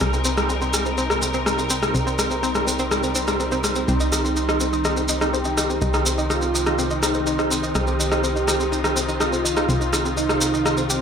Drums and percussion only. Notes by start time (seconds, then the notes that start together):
0.00 cross-stick, maracas
0.14 maracas
0.25 maracas
0.37 cross-stick, maracas
0.50 maracas
0.62 maracas
0.74 cross-stick, maracas
0.86 maracas
0.98 maracas
1.10 cross-stick, maracas
1.22 maracas
1.34 maracas
1.46 cross-stick, maracas
1.59 maracas
1.70 maracas
1.83 cross-stick, maracas
1.95 maracas
2.07 maracas
2.19 cross-stick, maracas
2.31 maracas
2.43 maracas
2.55 cross-stick, maracas
2.68 maracas
2.79 maracas
2.91 cross-stick, maracas
3.03 maracas
3.15 maracas
3.28 cross-stick, maracas
3.40 maracas
3.52 maracas
3.64 cross-stick, maracas
3.75 maracas
3.88 maracas
4.00 maracas
4.12 cross-stick, maracas
4.25 maracas
4.36 maracas
4.49 cross-stick, maracas
4.60 maracas
4.73 maracas
4.85 cross-stick, maracas
4.97 maracas
5.08 maracas
5.21 cross-stick, maracas
5.34 maracas
5.45 maracas
5.58 cross-stick, maracas
5.70 maracas
5.82 maracas
5.94 cross-stick, maracas
6.06 maracas
6.18 maracas
6.30 cross-stick, maracas
6.42 maracas
6.55 maracas
6.66 cross-stick, maracas
6.79 maracas
6.90 maracas
7.03 cross-stick, maracas
7.14 maracas
7.27 maracas
7.39 cross-stick, maracas
7.51 maracas
7.63 maracas
7.75 cross-stick, maracas
7.87 maracas
8.00 maracas
8.12 cross-stick, maracas
8.24 maracas
8.36 maracas
8.48 cross-stick, maracas
8.60 maracas
8.73 maracas
8.84 cross-stick, maracas
8.97 maracas
9.09 maracas
9.20 cross-stick, maracas
9.33 maracas
9.46 maracas
9.57 cross-stick, maracas
9.69 maracas
9.81 maracas
9.93 cross-stick, maracas
10.05 maracas
10.17 maracas
10.29 cross-stick, maracas
10.41 maracas
10.54 maracas
10.66 cross-stick, maracas
10.77 maracas
10.90 maracas